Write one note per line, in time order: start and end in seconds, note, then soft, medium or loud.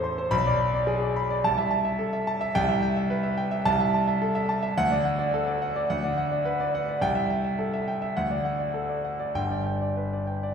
0.00 0.35 A1 medium
0.00 0.34 E2 medium
0.00 0.35 A4 medium
0.00 0.18 C5 medium
0.00 0.04 C6 loud
0.00 0.26 C6 medium
0.18 0.32 C5 medium
0.31 1.40 B1 loud
0.31 0.54 B5 loud
0.46 0.68 D5 medium
0.60 0.82 B5 medium
0.74 0.97 D5 medium
0.87 1.10 G#4 medium
1.02 1.25 D5 medium
1.16 1.39 B5 medium
1.30 1.44 D5 medium
1.44 2.52 C2 medium
1.44 1.67 A5 loud
1.58 1.80 E5 medium
1.71 1.93 A5 medium
1.85 2.07 E5 medium
1.99 2.21 A4 medium
2.13 2.35 E5 medium
2.27 2.50 A5 medium
2.41 2.55 E5 medium
2.55 3.63 C2 loud
2.55 2.78 G5 loud
2.68 2.91 E5 medium
2.82 3.05 G5 medium
2.96 3.19 E5 medium
3.10 3.33 B4 medium
3.23 3.46 E5 medium
3.37 3.60 G5 medium
3.51 3.66 E5 medium
3.65 4.73 C2 loud
3.65 3.88 A5 loud
3.80 4.02 E5 medium
3.94 4.16 A5 medium
4.08 4.30 E5 medium
4.22 4.44 A4 medium
4.35 4.57 E5 medium
4.49 4.71 A5 medium
4.62 4.77 E5 medium
4.78 5.86 D2 loud
4.78 5.00 F#5 loud
4.91 5.14 D5 medium
5.05 5.28 F#5 medium
5.19 5.41 D5 medium
5.34 5.56 A4 medium
5.47 5.69 D5 medium
5.62 5.84 F#5 medium
5.76 5.90 D5 medium
5.90 6.99 D2 medium
5.90 6.12 F#5 loud
6.03 6.26 D5 medium
6.18 6.40 F#5 medium
6.32 6.54 D5 medium
6.45 6.68 B4 medium
6.60 6.82 D5 medium
6.75 6.97 F#5 medium
6.88 7.02 D5 medium
7.01 8.13 C2 medium
7.01 7.24 G5 loud
7.15 7.38 E5 medium
7.30 7.53 G5 medium
7.44 7.67 E5 medium
7.59 7.82 A4 medium
7.73 7.96 E5 medium
7.88 8.11 G5 medium
8.02 8.16 E5 medium
8.17 9.33 D2 medium
8.17 8.39 F#5 medium
8.31 8.54 D5 medium
8.45 8.68 F#5 medium
8.59 8.83 D5 medium
8.74 8.98 A4 medium
8.89 9.14 D5 medium
9.04 9.29 F#5 medium
9.20 9.35 D5 medium
9.34 10.54 G1 medium
9.34 10.54 G2 medium
9.34 9.60 G5 loud
9.51 9.76 D5 medium
9.66 9.91 G5 medium
9.82 10.06 D5 medium
9.97 10.22 B4 medium
10.13 10.37 D5 medium
10.27 10.52 G5 medium
10.43 10.54 D5 medium